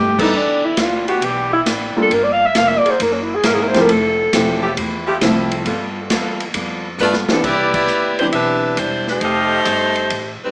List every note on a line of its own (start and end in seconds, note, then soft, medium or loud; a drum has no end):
0.00 0.31 G2 medium
0.00 0.21 B2 medium
0.00 0.21 A3 medium
0.00 0.22 D#4 medium
0.00 0.20 G4 medium
0.00 0.22 G4 medium
0.18 0.74 E3 loud
0.18 0.32 G3 medium
0.18 0.74 B3 loud
0.18 0.32 B3 medium
0.18 0.75 D4 medium
0.18 0.32 D4 medium
0.18 0.38 D#4 medium
0.18 0.32 E4 medium
0.18 0.32 G4 medium
0.18 0.74 A4 loud
0.18 kick medium
0.18 crash medium
0.33 0.76 E2 medium
0.33 0.65 E3 soft
0.33 0.65 B3 soft
0.33 0.66 D4 medium
0.33 0.67 D4 medium
0.33 0.66 G4 soft
0.33 kick soft
0.65 0.82 E4 medium
0.77 1.21 D2 medium
0.77 1.09 E3 medium
0.77 1.10 B3 medium
0.77 1.10 D4 medium
0.77 1.09 F4 medium
0.77 1.10 G4 medium
0.77 kick soft
0.77 snare medium
0.77 hi-hat pedal medium
0.77 ride medium
1.07 1.63 E3 medium
1.07 1.63 B3 medium
1.07 1.64 D4 medium
1.07 1.26 F#4 medium
1.07 1.63 G4 loud
1.07 ride soft
1.21 1.65 B1 medium
1.21 1.54 E3 soft
1.21 1.54 B3 soft
1.21 1.54 D4 medium
1.21 1.55 G4 medium
1.21 1.53 G4 medium
1.21 kick soft
1.21 ride medium
1.53 1.62 E4 medium
1.66 1.94 A1 medium
1.66 1.98 E3 medium
1.66 1.98 B3 medium
1.66 1.98 D4 medium
1.66 1.99 G4 medium
1.66 kick soft
1.66 snare medium
1.66 hi-hat pedal medium
1.66 ride medium
1.95 2.09 G3 medium
1.95 2.10 A#3 medium
1.95 2.10 D4 medium
1.95 2.10 F4 medium
1.95 2.10 A4 medium
1.95 muted upright bass stroke soft
2.02 2.14 A4 medium
2.10 2.54 G1 medium
2.10 2.43 G2 soft
2.10 2.43 F3 medium
2.10 2.44 A#3 medium
2.10 2.44 D4 medium
2.10 2.25 A#4 medium
2.10 kick soft
2.10 ride medium
2.24 2.34 D5 medium
2.32 2.48 F5 loud
2.46 2.59 E5 loud
2.55 2.83 F1 medium
2.55 2.87 G2 medium
2.55 2.88 F3 medium
2.55 2.88 A#3 medium
2.55 2.88 D4 medium
2.55 2.70 F5 loud
2.55 kick soft
2.55 snare medium
2.55 hi-hat pedal medium
2.55 ride medium
2.68 2.79 E5 loud
2.78 2.92 D5 loud
2.85 2.95 F#3 medium
2.85 2.95 A#3 medium
2.85 2.95 E4 medium
2.85 2.95 G#4 medium
2.85 muted upright bass stroke soft
2.85 ride soft
2.90 3.04 C5 medium
2.99 3.43 F#1 medium
2.99 3.32 F#3 soft
2.99 3.32 A#3 soft
2.99 3.32 E4 medium
2.99 3.32 G#4 medium
2.99 3.14 A#4 medium
2.99 kick soft
2.99 ride medium
3.13 3.24 C#4 medium
3.23 3.37 E4 medium
3.35 3.48 G#4 medium
3.43 3.87 G#1 medium
3.43 3.88 F#3 medium
3.43 3.76 F#3 medium
3.43 3.89 A#3 medium
3.43 3.77 A#3 medium
3.43 3.88 E4 medium
3.43 3.77 E4 medium
3.43 3.77 G#4 medium
3.43 3.89 A#4 loud
3.43 3.56 A#4 medium
3.43 kick soft
3.43 snare medium
3.43 hi-hat pedal medium
3.43 ride medium
3.54 3.64 G#4 medium
3.62 3.70 A#4 medium
3.68 3.82 C5 loud
3.74 3.88 F3 medium
3.74 3.88 A3 medium
3.74 3.88 C4 medium
3.74 3.88 E4 medium
3.74 3.88 G4 medium
3.74 snare medium
3.74 ride medium
3.81 3.93 A#4 loud
3.88 4.32 F1 medium
3.88 4.21 F3 soft
3.88 4.21 A3 soft
3.88 4.22 E4 soft
3.88 4.22 G4 medium
3.88 4.65 A4 loud
3.88 kick soft
3.88 ride medium
4.33 4.76 E1 medium
4.33 4.61 F3 medium
4.33 4.65 F3 medium
4.33 4.61 A3 medium
4.33 4.66 A3 medium
4.33 4.61 C4 medium
4.33 4.61 E4 soft
4.33 4.66 E4 medium
4.33 4.61 G4 medium
4.33 4.66 G4 medium
4.33 kick soft
4.33 snare medium
4.33 hi-hat pedal medium
4.33 ride medium
4.62 4.72 F3 medium
4.62 4.73 A3 medium
4.62 4.72 E4 medium
4.62 4.72 G4 loud
4.77 5.20 E2 medium
4.77 5.10 F3 medium
4.77 5.10 A3 medium
4.77 5.10 E4 medium
4.77 5.11 G4 medium
4.77 kick soft
4.77 ride medium
5.06 5.17 F3 loud
5.06 5.17 A3 medium
5.06 5.17 E4 medium
5.06 5.17 G4 loud
5.21 5.65 C2 loud
5.21 5.54 F3 medium
5.21 5.67 F3 medium
5.21 5.67 A3 medium
5.21 5.54 A3 medium
5.21 5.67 C4 medium
5.21 5.67 E4 medium
5.21 5.54 E4 medium
5.21 5.55 G4 medium
5.21 5.67 A4 medium
5.21 kick soft
5.21 snare medium
5.21 hi-hat pedal medium
5.21 ride medium
5.51 ride soft
5.65 6.09 G2 medium
5.65 6.35 G3 medium
5.65 5.98 G3 medium
5.65 6.35 B3 medium
5.65 5.99 B3 medium
5.65 6.35 F4 medium
5.65 5.99 F4 medium
5.65 6.35 A4 medium
5.65 5.99 A4 medium
5.65 kick soft
5.65 ride medium
6.10 6.54 E2 medium
6.10 6.43 G3 medium
6.10 6.43 B3 medium
6.10 6.44 F4 medium
6.10 6.44 A4 medium
6.10 kick soft
6.10 snare medium
6.10 hi-hat pedal medium
6.10 ride medium
6.40 ride soft
6.54 6.98 F2 medium
6.54 6.87 G3 medium
6.54 6.87 B3 soft
6.54 6.88 F4 medium
6.54 6.88 A4 medium
6.54 kick soft
6.54 ride medium
6.98 7.27 G2 medium
6.98 7.32 G3 medium
6.98 7.14 A3 medium
6.98 7.32 B3 medium
6.98 7.14 D4 medium
6.98 7.14 F4 medium
6.98 7.32 F4 medium
6.98 7.32 A4 medium
6.98 7.14 B4 medium
6.98 hi-hat pedal medium
7.13 snare medium
7.29 7.43 E3 medium
7.29 7.44 F3 medium
7.29 7.43 B3 medium
7.29 7.44 B3 medium
7.29 7.43 C4 medium
7.29 7.44 D4 medium
7.29 7.44 G4 medium
7.29 7.44 A4 medium
7.29 muted upright bass stroke soft
7.29 snare medium
7.44 7.87 C2 medium
7.44 7.73 B3 medium
7.44 7.74 E4 medium
7.44 8.13 G4 medium
7.44 7.74 G4 medium
7.44 8.13 B4 medium
7.44 8.13 D5 medium
7.44 7.74 D5 loud
7.44 8.13 E5 medium
7.44 kick medium
7.44 crash medium
7.74 8.16 B3 medium
7.74 8.16 E4 medium
7.74 8.16 G4 medium
7.74 8.16 D5 medium
7.74 kick medium
7.74 crash medium
7.87 8.31 D2 medium
7.87 hi-hat pedal soft
8.19 8.76 E3 medium
8.19 8.26 G3 medium
8.19 8.76 B3 soft
8.19 8.76 C4 medium
8.19 8.26 D4 medium
8.19 8.76 D4 medium
8.19 8.26 E4 medium
8.19 8.76 G4 medium
8.19 8.26 C5 medium
8.19 ride soft
8.32 8.76 B1 medium
8.32 8.75 D4 medium
8.32 8.75 G4 medium
8.32 8.75 B4 medium
8.32 8.75 E5 loud
8.32 kick soft
8.32 ride medium
8.77 9.21 E1 medium
8.77 9.08 G3 medium
8.77 9.08 D4 medium
8.77 9.09 E4 medium
8.77 9.08 C5 medium
8.77 kick soft
8.77 hi-hat pedal medium
8.77 ride medium
9.07 10.38 A3 medium
9.07 10.38 D#4 medium
9.07 10.39 G4 medium
9.07 10.38 C5 loud
9.07 snare soft
9.21 9.65 F1 medium
9.21 9.91 G4 medium
9.21 9.91 A4 medium
9.21 9.91 D#5 medium
9.21 9.91 F5 medium
9.21 kick soft
9.21 ride medium
9.65 10.10 G1 medium
9.65 kick soft
9.65 hi-hat pedal medium
9.65 ride medium
9.96 ride soft
10.10 10.39 A1 medium
10.10 kick soft
10.10 ride medium
10.42 10.51 G3 medium
10.42 10.51 C4 medium
10.42 10.51 D#4 medium
10.42 10.51 B4 medium
10.42 muted upright bass stroke soft